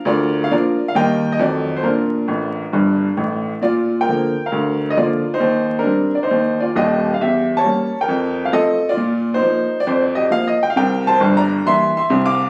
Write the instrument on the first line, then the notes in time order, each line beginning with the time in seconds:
grand piano
0.05 D2 F4 A#4 D5
0.44 F5
0.51 F3 A#3 D4 F4 A#4 D5
0.88 F5
0.95 D#2 D#3 G3 A#3 A#4 D#5 G5
1.32 D#5
1.39 F2 D#3 F#3 A3 D5
1.77 C5
1.83 A#2 D4 F4 A#4
2.28 A1 A2
2.73 G1 G2
3.17 A1 A2
3.62 A#2 F4 D5
4.01 A#4 G5
4.08 D3 F3 A#3
4.46 A#4 F5
4.52 D2
4.90 D#5
4.97 D3 F3 A#3 F4 D5
5.34 D#4 C5
5.40 D#2
5.79 D4 A#4
5.85 G3 C4
6.15 D5
6.23 D#4 C5
6.31 D#2
6.60 F4 D5
6.75 D#1 D#2 G4 D#5
7.14 F5
7.21 E2 G4 E5
7.57 C#5 A5
7.64 G3 A#3 C#4
8.01 A#4 G5
8.08 F2
8.45 F5
8.53 F3 A3 C4 A4 D#5
8.89 F4 D5
8.97 A#2
9.34 D#4 C5
9.42 F3 A#3
9.80 D5
9.87 F2 C5
10.01 D5
10.15 G4 D#5
10.30 F3 A#3 F5
10.48 D#5
10.63 G5
10.70 F5
10.76 C2 C3 A#4 G5
11.07 C5 A5
11.20 G1 G2
11.37 D5 A#5
11.66 E3 G3 A#3 E5 C6
11.97 E5 C6
12.10 C2 C3
12.26 F5 D6